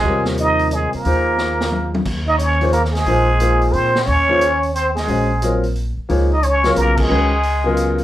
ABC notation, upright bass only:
X:1
M:3/4
L:1/8
Q:"Swing" 1/4=178
K:Ebmix
V:1 name="Upright bass" clef=bass
E,,4- E,, z | E,,6 | [K:Ebm] E,,6 | B,,,4 B,,2 |
E,,6 | B,,,4- B,,, z | D,,4 C,,2 | D,,6 |]